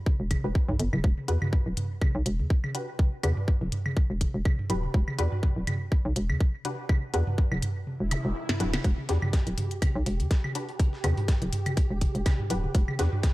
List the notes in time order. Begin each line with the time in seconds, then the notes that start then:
0.06 kick, high tom
0.20 E1
0.31 kick, closed hi-hat, high tom, high woodblock
0.44 E1 D4 F#4 G4 B4
0.55 kick
0.69 B1, mid tom, high tom
0.80 G1, closed hi-hat
0.93 D1, high tom, high woodblock
1.04 E1, kick
1.17 high tom
1.28 E2 D4 F#4 G4 B4, closed hi-hat
1.42 mid tom, high tom, high woodblock
1.53 kick
1.66 D1
1.77 closed hi-hat, mid tom, high tom
2.02 kick, high tom, high woodblock
2.15 B1
2.26 E1, closed hi-hat
2.39 E2, high tom
2.50 kick
2.64 high tom, high woodblock
2.75 D4 F#4 G4 B4, closed hi-hat
2.99 kick, high tom
3.23 E2 D4 F#4 G4 B4, closed hi-hat, high tom, high woodblock
3.37 mid tom
3.48 kick
3.61 D1, high tom
3.72 closed hi-hat, mid tom
3.86 high tom, high woodblock
3.97 kick
4.10 E1
4.21 kick, closed hi-hat, high tom
4.34 E1
4.45 kick, high tom, high woodblock
4.59 mid tom
4.70 D1 D4 F#4 G4 B4, closed hi-hat
4.83 high tom
4.94 E1, kick
5.08 high tom, high woodblock
5.19 E2 D4 F#4 G4 B4, closed hi-hat
5.32 mid tom
5.43 kick, high tom
5.56 D1
5.67 closed hi-hat, mid tom, high tom, high woodblock
5.92 kick
6.05 B1, high tom
6.16 E1, closed hi-hat
6.30 E2, high tom, high woodblock
6.41 kick
6.65 D4 F#4 G4 B4, closed hi-hat, high tom
6.89 kick, high tom, high woodblock
7.14 E2 D4 F#4 G4 B4, closed hi-hat
7.27 mid tom, high tom
7.38 kick
7.52 D1, high tom, high woodblock
7.62 closed hi-hat, mid tom
7.87 high tom, swell
8.00 E1
8.11 closed hi-hat, high tom, zap, high woodblock
8.25 E1
8.49 snare, mid tom, high tom
8.60 D1 D4 F#4 G4 B4, closed hi-hat
8.74 snare, high tom, high woodblock
8.84 E1 G4, kick, closed hi-hat
8.98 high tom
9.09 E2 D4 F#4 G4 B4, snare, closed hi-hat
9.22 mid tom, high tom, high woodblock
9.33 kick, snare, closed hi-hat
9.47 D1, closed hi-hat
9.58 closed hi-hat, mid tom, high tom
9.71 closed hi-hat
9.82 kick, closed hi-hat, high tom, high woodblock
9.96 B1
10.06 E1, closed hi-hat
10.20 E2, closed hi-hat, high tom
10.31 kick, snare, closed hi-hat
10.44 high tom, high woodblock
10.55 D4 F#4 G4 B4, closed hi-hat
10.69 closed hi-hat
10.80 kick, closed hi-hat, high tom
10.93 snare
11.04 E2 D4 F#4 G4 B4, closed hi-hat, high tom, high woodblock
11.17 closed hi-hat, mid tom
11.28 kick, snare, closed hi-hat
11.42 D1, closed hi-hat, high tom
11.53 closed hi-hat, mid tom
11.66 closed hi-hat, high tom, high woodblock
11.77 kick, closed hi-hat
11.91 E1
12.01 kick, closed hi-hat, high tom
12.15 E1, closed hi-hat
12.26 kick, snare, closed hi-hat, high tom, high woodblock
12.39 mid tom
12.50 D1 D4 F#4 G4 B4, closed hi-hat
12.64 high tom
12.75 E1, kick, closed hi-hat
12.88 high tom, high woodblock
12.99 E2 D4 F#4 G4 B4, snare, closed hi-hat
13.13 mid tom
13.23 kick, snare, closed hi-hat, high tom